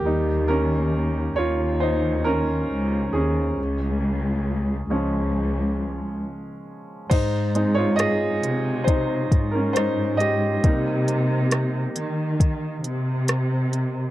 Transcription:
<<
  \new Staff \with { instrumentName = "Upright piano" } { \time 4/4 \key aes \major \tempo 4 = 68 g'8 <des' bes'>4 <f' des''>8 <ees' c''>8 <des' bes'>4 <des' aes'>8~ | <des' aes'>2. r4 | <ees' c''>8. <f' des''>16 <aes' ees''>4 <ees' c''>8. <des' bes'>16 <ees' c''>8 <g' ees''>8~ | <g' ees''>8 r2. r8 | }
  \new Staff \with { instrumentName = "Upright piano" } { \time 4/4 \key aes \major <g bes ees'>4. r2 r8 | r4. <f aes des'>2~ <f aes des'>8 | r8 <aes c' ees'>2.~ <aes c' ees'>8 | <g bes ees'>1 | }
  \new Staff \with { instrumentName = "Cello section" } { \clef bass \time 4/4 \key aes \major ees,4. ees,4. des,8 ees,8 | des,4. des,4. r4 | aes,4. c4 aes,4. | c4. ees4 c4. | }
  \new DrumStaff \with { instrumentName = "Drums" } \drummode { \time 4/4 r4 r4 r4 r4 | r4 r4 r4 r4 | <cymc hh bd>8 hh8 <hh ss>8 hh8 <hh bd>8 <hh bd>8 <hh ss>8 hh8 | <hh bd>8 hh8 <hh ss>8 hh8 <hh bd>8 hh8 <hh ss>8 hh8 | }
>>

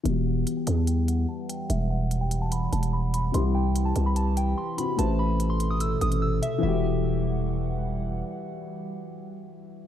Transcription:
<<
  \new Staff \with { instrumentName = "Synth bell" } { \time 4/4 \key e \minor \tempo 4 = 146 e''8 fis''8. g''8 a''16 g''8 fis''8 a''8 g''8 | e''8 fis''8. g''8 a''16 b''8 a''8 b''8 b''8 | c'''8 g''8. a''8 b''16 a''8 g''8 c'''8 b''8 | a''8 b''8. c'''8 dis'''16 e'''8 dis'''8 e'''8 e''8 |
e''2. r4 | r1 | }
  \new Staff \with { instrumentName = "Grand piano" } { \time 4/4 \key e \minor <e b fis' g'>1~ | <e b fis' g'>1 | <c c' e' g'>2.~ <c c' e' g'>8 <c c' e' fis'>8 | <a e' b' c''>1 |
<e e' fis' g'>1~ | <e e' fis' g'>1 | }
  \new Staff \with { instrumentName = "Ambient pad" } { \clef bass \time 4/4 \key e \minor <e g fis''>1~ | <e g fis''>1 | <e c' g'>1 | <b, c a'>1 |
<e g fis''>1~ | <e g fis''>1 | }
  \new Staff \with { instrumentName = "808-style bass" } { \clef bass \time 4/4 \key e \minor e,,4 r8 e,4. r4 | e,,2~ e,,8 e,,4. | c,4. c,4. r4 | a,,2~ a,,8 a,,4 r8 |
e,,1 | r1 | }
  \new DrumStaff \with { instrumentName = "Drums" } \drummode { \time 4/4 hh4 hh8 hh8 hh8 hh8 r8 hh8 | hh4 hh8 hh8 hh8 hh16 hh16 r8 hh8 | hh4 hh8 hh8 hh8 hh8 r8 hh8 | hh4 hh8 hh8 hh8 hh16 hh16 r8 hh8 |
r4 r4 r4 r4 | r4 r4 r4 r4 | }
>>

